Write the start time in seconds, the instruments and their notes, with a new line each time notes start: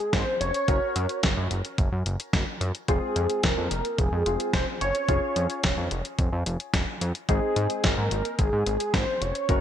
Already playing: grand piano C4 D#4 G#4, analog synth lead G#4
0.13 analog synth bass G#1, analog synth lead C5, kick, snare, closed hi-hat
0.41 analog synth bass F1, analog synth lead C#5, closed hi-hat
0.54 closed hi-hat
0.68 analog synth bass F#1, grand piano C#4 F#4 A#4, kick, closed hi-hat
0.96 analog synth bass F#2, closed hi-hat
1.09 closed hi-hat
1.23 analog synth bass F#1, kick, snare, closed hi-hat
1.37 analog synth bass F#2
1.51 analog synth bass F#1, closed hi-hat
1.65 closed hi-hat
1.78 analog synth bass F#1, kick, closed hi-hat
1.92 analog synth bass F#2
2.06 analog synth bass F#1, closed hi-hat
2.20 closed hi-hat
2.33 analog synth bass F#1, kick, snare, closed hi-hat
2.61 analog synth bass F#2, closed hi-hat
2.75 closed hi-hat
2.88 analog synth bass F1, grand piano C4 F4 G#4, analog synth lead G#4, kick, closed hi-hat
3.16 analog synth bass F2, closed hi-hat
3.30 closed hi-hat
3.43 analog synth bass F1, analog synth lead A#4, kick, snare, closed hi-hat
3.57 analog synth bass F2
3.71 analog synth bass F1, closed hi-hat
3.85 closed hi-hat
3.98 analog synth bass F1, analog synth lead G#4, kick, closed hi-hat
4.12 analog synth bass F2
4.26 analog synth bass F1, grand piano C4 F4 G#4, closed hi-hat
4.40 closed hi-hat
4.53 analog synth bass F1, analog synth lead C5, kick, snare, closed hi-hat
4.81 analog synth bass F#1, analog synth lead C#5, closed hi-hat
4.95 closed hi-hat
5.08 analog synth bass F1, grand piano C#4 F4 G#4, kick, closed hi-hat
5.36 analog synth bass F2, closed hi-hat
5.50 closed hi-hat
5.63 analog synth bass F1, kick, snare, closed hi-hat
5.77 analog synth bass F2
5.91 analog synth bass F1, closed hi-hat
6.05 closed hi-hat
6.19 analog synth bass F1, kick, closed hi-hat
6.32 analog synth bass F2
6.46 analog synth bass F1, closed hi-hat
6.60 closed hi-hat
6.74 analog synth bass F1, kick, snare, closed hi-hat
7.01 analog synth bass F2, closed hi-hat
7.15 closed hi-hat
7.29 analog synth bass G#1, grand piano C4 D#4 G#4, analog synth lead G#4, kick, closed hi-hat
7.56 analog synth bass G#2, closed hi-hat
7.70 closed hi-hat
7.84 analog synth bass G#1, analog synth lead A#4, kick, snare, closed hi-hat
7.98 analog synth bass G#2
8.11 analog synth bass G#1, closed hi-hat
8.25 closed hi-hat
8.39 analog synth bass G#1, analog synth lead G#4, kick, closed hi-hat
8.53 analog synth bass G#2
8.66 analog synth bass G#1, closed hi-hat
8.80 closed hi-hat
8.94 analog synth bass G#1, analog synth lead C5, kick, snare, closed hi-hat
9.21 analog synth bass F1, analog synth lead C#5, closed hi-hat
9.35 closed hi-hat
9.49 analog synth bass F#1, grand piano C#4 F#4 A#4, kick, closed hi-hat